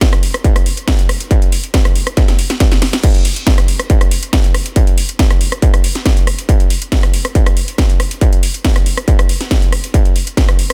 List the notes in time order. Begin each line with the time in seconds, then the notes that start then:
0.01 kick, snare, closed hi-hat
0.13 cross-stick, closed hi-hat
0.23 open hi-hat
0.34 cross-stick, closed hi-hat
0.44 kick, closed hi-hat
0.56 cross-stick, closed hi-hat
0.66 open hi-hat
0.77 closed hi-hat
0.88 kick, snare, closed hi-hat
0.99 closed hi-hat
1.09 cross-stick, open hi-hat
1.20 closed hi-hat
1.31 kick, closed hi-hat
1.42 closed hi-hat
1.52 open hi-hat
1.64 closed hi-hat
1.74 kick, snare, closed hi-hat
1.85 cross-stick, closed hi-hat
1.96 open hi-hat
2.07 cross-stick, closed hi-hat
2.17 kick, snare, closed hi-hat
2.28 snare, closed hi-hat
2.39 open hi-hat
2.50 snare, closed hi-hat
2.60 kick, snare, closed hi-hat
2.72 snare, closed hi-hat
2.82 snare, open hi-hat
2.93 snare, closed hi-hat
3.04 kick, closed hi-hat, crash
3.15 closed hi-hat
3.25 open hi-hat
3.36 closed hi-hat
3.47 kick, snare, closed hi-hat
3.58 cross-stick, closed hi-hat
3.68 open hi-hat
3.80 cross-stick, closed hi-hat
3.90 kick, closed hi-hat
4.01 cross-stick, closed hi-hat
4.11 open hi-hat
4.23 closed hi-hat
4.33 kick, snare, closed hi-hat
4.44 closed hi-hat
4.54 cross-stick, open hi-hat
4.66 closed hi-hat
4.76 kick, closed hi-hat
4.87 closed hi-hat
4.98 open hi-hat
5.09 closed hi-hat
5.19 kick, snare, closed hi-hat
5.31 cross-stick, closed hi-hat
5.41 open hi-hat
5.52 cross-stick, closed hi-hat
5.62 kick, closed hi-hat
5.74 cross-stick, closed hi-hat
5.84 open hi-hat
5.95 snare, closed hi-hat
6.06 kick, snare, closed hi-hat
6.17 closed hi-hat
6.27 cross-stick, open hi-hat
6.39 closed hi-hat
6.49 kick, closed hi-hat
6.60 closed hi-hat
6.70 open hi-hat
6.82 closed hi-hat
6.92 kick, snare, closed hi-hat
7.03 cross-stick, closed hi-hat
7.14 open hi-hat
7.25 cross-stick, closed hi-hat
7.35 kick, closed hi-hat
7.46 cross-stick, closed hi-hat
7.57 open hi-hat
7.68 closed hi-hat
7.78 kick, snare, closed hi-hat
7.90 closed hi-hat
8.00 cross-stick, open hi-hat
8.11 closed hi-hat
8.21 kick, closed hi-hat
8.33 closed hi-hat
8.43 open hi-hat
8.54 closed hi-hat
8.65 kick, snare, closed hi-hat
8.76 cross-stick, closed hi-hat
8.86 open hi-hat
8.97 cross-stick, closed hi-hat
9.08 kick, closed hi-hat
9.19 cross-stick, closed hi-hat
9.29 open hi-hat
9.41 snare, closed hi-hat
9.51 kick, snare, closed hi-hat
9.62 closed hi-hat
9.72 cross-stick, open hi-hat
9.84 closed hi-hat
9.94 kick, closed hi-hat
10.05 closed hi-hat
10.16 open hi-hat
10.27 closed hi-hat
10.37 kick, snare, closed hi-hat
10.49 cross-stick, closed hi-hat
10.59 open hi-hat
10.70 cross-stick, closed hi-hat